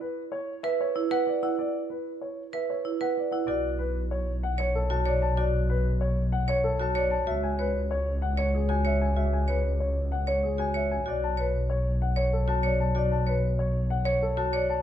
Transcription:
0.01 B4
0.32 C#5
0.63 B4 E5
0.81 C#5
0.96 E4
1.11 B4 F#5
1.27 D5
1.43 E4 F#5
1.59 D5
1.90 B4
2.21 C#5
2.53 B4 E5
2.70 C#5
2.85 E4
3.01 B4 F#5
3.17 D5
3.31 E4 F#5
3.47 B1 F#4 D5
3.79 B4
4.11 C#5
4.43 F#5
4.58 C#5
4.75 A4
4.90 F#4 A5
5.06 C#5 D5
5.22 A5
5.37 F#4 D5
5.70 B4
6.01 C#5
6.32 F#5
6.48 C#5
6.64 A4
6.80 F#4 A5
6.95 C#5 D5
7.11 A5
7.27 C#2 F#4 E5
7.43 G#5
7.59 B4 C#5
7.91 C#5
8.22 F#5
8.38 C#5
8.54 G#4
8.69 F#4 G#5
8.85 C#5 E5
9.01 G#5
9.17 F#4 E5
9.33 G#5
9.48 B4 C#5
9.80 C#5
10.12 F#5
10.27 C#5
10.43 G#4
10.58 F#4 G#5
10.74 C#5 E5
10.91 G#5
11.06 B1 F#4 D5
11.24 A5
11.37 B4 C#5
11.70 C#5
12.02 F#5
12.16 C#5
12.33 A4
12.48 F#4 A5
12.63 C#5 D5
12.80 A5
12.95 F#4 D5
13.11 A5
13.26 B4 C#5
13.59 C#5
13.90 F#5
14.05 C#5
14.22 A4
14.37 F#4 A5
14.53 C#5 D5
14.70 A5

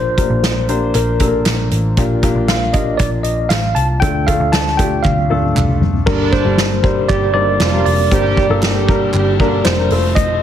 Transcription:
Already playing: A#1 A#2 A#3 D4 G4 A#4 C5
0.17 A#3 D4 G4 A#4, kick, closed hi-hat
0.30 A#1
0.43 snare, clap, closed hi-hat
0.69 A#3 D4 G4 C5, closed hi-hat
0.94 A#1 A#4, clap, closed hi-hat
1.20 A#3 D4 G4 A4, kick, closed hi-hat
1.27 A#4
1.45 A#1, snare, clap, closed hi-hat
1.71 A1, closed hi-hat
1.97 A#1 A#2 A#3 D4 F4 G4, kick, closed hi-hat
2.23 A#3 D4 F4 G4, kick, closed hi-hat
2.35 A#1
2.48 F5, snare, clap, closed hi-hat
2.73 A#3 D4 F4 G4 D#5, kick, closed hi-hat
2.97 A#1 D5, kick, clap, closed hi-hat
3.23 D#5, closed hi-hat
3.49 A1 F5, snare, clap, closed hi-hat
3.75 C2 A5, closed hi-hat
4.00 D2 D3 A3 D4 F4 A4 G5, kick, closed hi-hat
4.27 A3 D4 F4 A4 F5, kick, closed hi-hat
4.40 D2
4.52 A5, snare, clap, closed hi-hat
4.67 snare
4.77 A3 D4 F4 G4 G5, kick, closed hi-hat
5.03 D2 F5, kick, clap, high tom
5.18 high tom
5.30 A3 D4 F4 A4, mid tom
5.43 mid tom
5.55 C2, clap, mid tom
5.68 mid tom
5.81 F1, floor tom
5.94 floor tom
6.06 G1 G2 D3 G3 A#3 D4 G4 A#4, kick, crash
6.32 C5, kick, ride
6.45 G1 G3 A#3 D4 G4 A#4
6.58 snare, clap, ride
6.83 G3 A#3 D4 G4 C5, kick, ride
7.08 G1 G3 G4 D5, kick, clap, ride
7.34 D#3 G3 A#3 D4 D#4 G4 C5 D5, ride
7.60 F1 F3 F4, snare, clap, ride
7.73 G3 A#3 D4 G4 A#4
7.86 F1 D5, open hi-hat, ride
8.11 G1 G2 G3 A#3 D4 G4 C5, kick, hi-hat pedal, ride
8.37 kick, ride
8.49 G1 F3 G3 A#3 D4 F4 G4 A4
8.63 G3 G4, snare, clap, ride
8.88 G3 A#3 D4 G4 A#4, kick, ride
9.14 G1 G3 G4, clap, ride
9.40 D3 G3 A#3 D4 G4 A#4, kick, ride
9.65 F1 C5, snare, clap, ride
9.78 G3 A#3 D4 G4 A#4
9.90 F1 A3 C4 F4 A4 C5, open hi-hat, ride
10.15 D#5, kick, hi-hat pedal, ride

